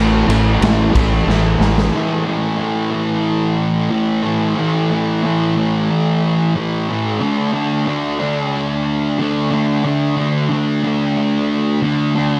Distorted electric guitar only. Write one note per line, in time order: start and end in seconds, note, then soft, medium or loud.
0.00 0.62 A2 medium
0.00 0.30 E3 medium
0.00 0.27 A3 medium
0.28 0.95 E3 medium
0.28 0.92 A3 medium
0.93 1.27 E3 medium
0.93 1.28 A3 medium
1.26 1.91 A2 medium
1.26 1.92 E3 medium
1.26 1.92 A3 medium
1.92 2.57 A2 medium
1.92 2.28 E3 medium
1.92 2.25 A3 medium
2.25 2.59 E3 medium
2.25 2.60 A3 medium
2.58 3.89 A2 medium
2.58 2.94 E3 medium
2.58 2.90 A3 medium
2.91 3.90 E3 medium
2.91 3.92 A3 medium
3.90 4.55 A2 medium
3.90 4.25 E3 medium
3.90 4.22 A3 medium
4.23 4.58 E3 medium
4.23 4.59 A3 medium
4.56 5.22 A2 medium
4.56 4.93 E3 loud
4.56 4.90 A3 loud
4.90 5.24 E3 medium
4.90 5.25 A3 medium
5.23 5.89 A2 medium
5.23 5.59 E3 medium
5.23 5.56 A3 medium
5.57 6.56 E3 medium
5.57 6.58 A3 medium
6.55 7.19 A2 medium
6.55 6.91 E3 medium
6.55 6.88 A3 medium
6.88 7.21 E3 medium
6.88 7.22 A3 medium
7.20 7.85 D3 medium
7.20 7.55 A3 medium
7.20 7.52 D4 medium
7.53 7.87 A3 medium
7.53 7.88 D4 medium
7.86 9.19 D3 medium
7.86 8.22 A3 medium
7.86 8.19 D4 medium
8.19 9.20 A3 medium
8.19 9.21 D4 medium
9.19 9.83 D3 medium
9.19 9.53 A3 medium
9.19 9.50 D4 medium
9.51 9.85 A3 medium
9.51 9.86 D4 medium
9.84 10.48 D3 medium
9.84 10.19 A3 medium
9.84 10.16 D4 loud
10.17 10.51 A3 medium
10.17 10.52 D4 medium
10.50 11.16 D3 medium
10.50 10.86 A3 medium
10.50 10.82 D4 medium
10.83 11.83 A3 medium
10.83 11.83 D4 medium
11.82 12.40 D3 medium
11.82 12.18 A3 medium
11.82 12.14 D4 medium
12.15 12.40 A3 medium
12.15 12.40 D4 medium